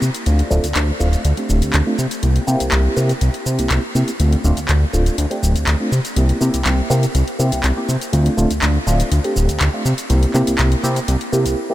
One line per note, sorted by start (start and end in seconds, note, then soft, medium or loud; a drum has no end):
0.02 0.10 C3 medium
0.02 shaker medium
0.14 closed hi-hat soft
0.14 shaker soft
0.26 0.42 D2 loud
0.26 0.48 A3 medium
0.26 0.48 C4 medium
0.26 0.48 D4 medium
0.26 0.48 F4 medium
0.26 closed hi-hat medium
0.26 shaker soft
0.39 closed hi-hat soft
0.50 0.59 D1 loud
0.50 0.65 A3 medium
0.50 0.65 C4 medium
0.50 0.65 D4 medium
0.50 0.65 F4 loud
0.50 shaker medium
0.64 0.73 D2 soft
0.64 closed hi-hat medium
0.64 shaker soft
0.75 0.91 D2 loud
0.75 clap loud
0.75 closed hi-hat medium
0.75 shaker soft
1.00 1.16 D1 medium
1.00 1.21 A3 medium
1.00 1.22 C4 medium
1.00 1.22 D4 medium
1.00 1.22 F4 loud
1.00 shaker medium
1.13 closed hi-hat soft
1.13 shaker soft
1.25 1.33 D2 medium
1.25 closed hi-hat medium
1.25 shaker soft
1.37 1.83 A3 medium
1.37 1.84 C4 medium
1.37 1.84 D4 medium
1.37 1.84 G4 medium
1.37 closed hi-hat soft
1.49 1.62 D1 medium
1.49 shaker medium
1.62 1.72 D2 soft
1.62 closed hi-hat soft
1.62 shaker soft
1.73 1.82 D2 medium
1.73 clap loud
1.73 closed hi-hat medium
1.73 shaker soft
1.86 1.97 A3 medium
1.86 1.97 C4 medium
1.86 1.97 D4 medium
1.86 1.97 F4 medium
1.99 2.07 C3 medium
1.99 shaker medium
2.11 closed hi-hat soft
2.11 shaker soft
2.22 2.39 C2 medium
2.22 2.44 A#3 medium
2.22 2.44 C4 medium
2.22 2.44 E4 medium
2.22 2.44 G4 medium
2.22 closed hi-hat medium
2.22 shaker soft
2.36 closed hi-hat soft
2.47 2.56 C3 loud
2.47 2.94 A#3 medium
2.47 2.94 C4 medium
2.47 2.94 E4 medium
2.47 2.94 G4 loud
2.47 shaker medium
2.60 2.70 C2 soft
2.60 closed hi-hat soft
2.60 shaker soft
2.72 2.88 C2 medium
2.72 clap loud
2.72 closed hi-hat medium
2.72 shaker soft
2.96 3.13 C3 medium
2.96 3.10 A#3 medium
2.96 3.11 C4 medium
2.96 3.11 E4 medium
2.96 3.11 G4 medium
2.96 shaker medium
3.09 closed hi-hat soft
3.09 shaker soft
3.21 3.30 C2 loud
3.21 closed hi-hat medium
3.21 shaker soft
3.34 closed hi-hat soft
3.46 3.58 C3 medium
3.46 shaker medium
3.58 3.68 C2 soft
3.58 3.80 A#3 medium
3.58 3.80 C4 medium
3.58 3.80 E4 medium
3.58 3.80 G4 medium
3.58 closed hi-hat soft
3.58 shaker soft
3.70 3.79 C2 medium
3.70 clap loud
3.70 closed hi-hat medium
3.70 shaker soft
3.95 4.03 C3 medium
3.95 4.09 A#3 medium
3.95 4.09 C4 medium
3.95 4.09 E4 medium
3.95 4.09 G4 medium
3.95 shaker medium
4.08 closed hi-hat soft
4.08 shaker soft
4.20 4.36 D2 medium
4.20 4.42 A3 medium
4.20 4.42 C4 medium
4.20 4.42 D4 medium
4.20 4.42 F4 medium
4.20 closed hi-hat medium
4.20 shaker soft
4.32 closed hi-hat soft
4.44 4.53 D1 loud
4.44 4.58 A3 medium
4.44 4.58 C4 medium
4.44 4.58 D4 medium
4.44 4.59 F4 loud
4.44 shaker medium
4.57 4.67 D2 soft
4.57 closed hi-hat soft
4.57 shaker soft
4.69 4.85 D2 medium
4.69 clap loud
4.69 closed hi-hat medium
4.69 shaker soft
4.93 5.09 D1 medium
4.93 5.15 A3 medium
4.93 5.15 C4 medium
4.93 5.15 D4 medium
4.93 5.15 F4 loud
4.93 shaker medium
5.06 closed hi-hat soft
5.06 shaker soft
5.18 5.26 D2 loud
5.18 closed hi-hat medium
5.18 shaker soft
5.31 5.77 A3 medium
5.31 5.77 C4 medium
5.31 5.77 D4 medium
5.31 5.77 G4 medium
5.31 closed hi-hat soft
5.43 5.55 D1 medium
5.43 shaker medium
5.56 5.65 D2 soft
5.56 closed hi-hat soft
5.56 shaker soft
5.67 5.75 D2 medium
5.67 clap loud
5.67 closed hi-hat medium
5.67 shaker soft
5.80 5.90 A3 medium
5.80 5.91 C4 medium
5.80 5.91 D4 medium
5.80 5.91 F4 medium
5.92 6.00 C3 medium
5.92 shaker medium
6.05 closed hi-hat soft
6.05 shaker soft
6.16 6.32 C2 medium
6.16 6.37 A#3 medium
6.16 6.38 C4 medium
6.16 6.38 E4 medium
6.16 6.38 G4 medium
6.16 closed hi-hat medium
6.16 shaker soft
6.29 closed hi-hat soft
6.41 6.49 C3 loud
6.41 6.87 A#3 medium
6.41 6.87 C4 medium
6.41 6.88 E4 medium
6.41 6.88 G4 medium
6.41 shaker medium
6.54 6.63 C2 soft
6.54 closed hi-hat medium
6.54 shaker soft
6.65 6.82 C2 medium
6.65 clap loud
6.65 closed hi-hat medium
6.65 shaker soft
6.90 7.06 C3 medium
6.90 7.04 A#3 medium
6.90 7.04 C4 medium
6.90 7.04 E4 medium
6.90 7.04 G4 medium
6.90 shaker medium
7.03 closed hi-hat soft
7.03 shaker soft
7.15 7.23 C2 loud
7.15 closed hi-hat medium
7.15 shaker soft
7.28 closed hi-hat soft
7.39 7.52 C3 medium
7.39 7.74 A#3 medium
7.39 7.74 C4 medium
7.39 7.74 E4 medium
7.39 7.74 G4 medium
7.39 shaker medium
7.52 7.62 C2 soft
7.52 closed hi-hat soft
7.52 shaker soft
7.64 7.72 C2 medium
7.64 clap loud
7.64 closed hi-hat medium
7.64 shaker soft
7.76 7.90 A#3 medium
7.76 7.90 C4 medium
7.76 7.90 E4 medium
7.76 7.90 G4 medium
7.89 7.97 C3 medium
7.89 shaker medium
8.01 closed hi-hat soft
8.01 shaker soft
8.13 8.29 D2 loud
8.13 8.35 A3 medium
8.13 8.35 C4 medium
8.13 8.35 D4 medium
8.13 8.35 F4 medium
8.13 closed hi-hat medium
8.13 shaker soft
8.26 closed hi-hat soft
8.37 8.46 D1 loud
8.37 8.51 A3 medium
8.37 8.52 C4 medium
8.37 8.52 D4 medium
8.37 8.52 F4 loud
8.37 shaker medium
8.51 8.60 D2 soft
8.51 closed hi-hat soft
8.51 shaker soft
8.62 8.78 D2 medium
8.62 clap loud
8.62 closed hi-hat medium
8.62 shaker soft
8.86 9.03 D1 medium
8.86 9.08 A3 medium
8.86 9.08 C4 medium
8.86 9.09 D4 medium
8.86 9.09 F4 loud
8.86 shaker medium
9.00 closed hi-hat soft
9.00 shaker soft
9.12 9.20 D2 loud
9.12 closed hi-hat medium
9.12 shaker soft
9.24 9.70 A3 medium
9.24 9.70 C4 medium
9.24 9.71 D4 medium
9.24 9.71 G4 medium
9.24 closed hi-hat soft
9.36 9.48 D1 medium
9.36 shaker medium
9.49 9.58 D2 soft
9.49 closed hi-hat soft
9.49 shaker soft
9.60 9.69 D2 medium
9.60 clap loud
9.60 closed hi-hat medium
9.60 shaker soft
9.73 9.84 A3 medium
9.73 9.84 C4 medium
9.73 9.84 D4 medium
9.73 9.84 F4 medium
9.85 9.93 C3 medium
9.85 shaker medium
9.98 closed hi-hat medium
9.98 shaker soft
10.10 10.26 C2 loud
10.10 10.31 A#3 medium
10.10 10.31 C4 medium
10.10 10.31 E4 medium
10.10 10.31 G4 medium
10.10 closed hi-hat medium
10.10 shaker soft
10.23 closed hi-hat soft
10.34 10.43 C3 loud
10.34 10.81 A#3 medium
10.34 10.81 C4 medium
10.34 10.81 E4 medium
10.34 10.81 G4 loud
10.34 clap soft
10.34 shaker medium
10.47 10.57 C2 soft
10.47 closed hi-hat medium
10.47 shaker soft
10.59 10.75 C2 medium
10.59 clap loud
10.59 closed hi-hat medium
10.59 shaker soft
10.72 closed hi-hat soft
10.83 11.00 C3 medium
10.83 10.97 A#3 medium
10.83 10.98 C4 medium
10.83 10.98 E4 medium
10.83 10.98 G4 medium
10.83 shaker medium
10.96 closed hi-hat soft
10.96 shaker soft
11.08 11.16 C2 loud
11.08 closed hi-hat medium
11.08 shaker soft
11.21 closed hi-hat soft
11.32 11.45 C3 medium
11.32 11.67 A#3 medium
11.32 11.67 C4 medium
11.32 11.67 E4 medium
11.32 11.67 G4 medium
11.32 shaker medium
11.46 11.55 C2 soft
11.46 closed hi-hat soft
11.46 shaker soft
11.70 11.74 A#3 medium
11.70 11.74 C4 medium
11.70 11.74 E4 medium
11.70 11.74 G4 medium